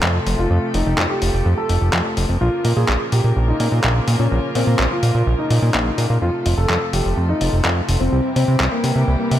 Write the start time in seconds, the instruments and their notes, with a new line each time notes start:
Already playing: string section C3 F3 A3 F4 A4
0.03 analog synth bass F2, clap
0.27 analog synth bass F1, open hi-hat
0.38 analog synth bass F1, grand piano F4
0.50 analog synth bass F2, string section G4
0.74 analog synth bass F1, grand piano D#4, open hi-hat
0.86 analog synth bass F1
0.98 analog synth bass F2, clap
1.10 grand piano G4
1.22 analog synth bass F1, open hi-hat
1.34 analog synth bass F1
1.46 analog synth bass F2
1.58 grand piano A4
1.69 analog synth bass F1, open hi-hat
1.81 analog synth bass F1
1.93 analog synth bass F2, clap
2.17 analog synth bass F1, open hi-hat
2.29 analog synth bass F1
2.41 analog synth bass A#1, string section C#3 A#3 F4 A#4, grand piano F4
2.65 analog synth bass A#2, open hi-hat
2.77 analog synth bass A#2, grand piano G#4
2.88 analog synth bass A#1, clap
3.12 analog synth bass A#2, grand piano G4, open hi-hat
3.24 analog synth bass A#2
3.36 analog synth bass A#1
3.48 grand piano D#4
3.60 analog synth bass A#2, open hi-hat
3.72 analog synth bass A#2
3.84 analog synth bass A#1, clap
4.08 analog synth bass A#2, open hi-hat
4.20 analog synth bass A#2, grand piano C#4
4.31 analog synth bass A#1
4.55 analog synth bass A#2, grand piano C4, open hi-hat
4.67 analog synth bass A#2
4.79 analog synth bass A#1, clap
4.91 grand piano F4
5.03 analog synth bass A#2, open hi-hat
5.15 analog synth bass A#2
5.27 analog synth bass A#1
5.39 grand piano D#4
5.50 analog synth bass A#2, open hi-hat
5.62 analog synth bass A#2
5.74 analog synth bass A#1, clap
5.98 analog synth bass A#2, open hi-hat
6.10 analog synth bass A#2
6.22 analog synth bass F2, string section C3 F3 A3 A4, grand piano F4
6.46 analog synth bass F1, open hi-hat
6.58 analog synth bass F1, grand piano A4
6.69 analog synth bass F2, clap
6.93 analog synth bass F1, grand piano G4, open hi-hat
7.05 analog synth bass F1
7.17 analog synth bass F2
7.29 grand piano D#4
7.41 analog synth bass F1, open hi-hat
7.53 analog synth bass F1
7.65 analog synth bass F2, clap
7.88 analog synth bass F1, open hi-hat
8.00 analog synth bass F1, grand piano C4
8.12 analog synth bass C2, string section E3 G3 E4 G4
8.36 analog synth bass C3, grand piano C4, open hi-hat
8.48 analog synth bass C3
8.60 analog synth bass C2, clap
8.72 grand piano A#3
8.84 analog synth bass C3, open hi-hat
8.96 analog synth bass C3
9.08 analog synth bass C2
9.20 grand piano A#3
9.31 analog synth bass C3, open hi-hat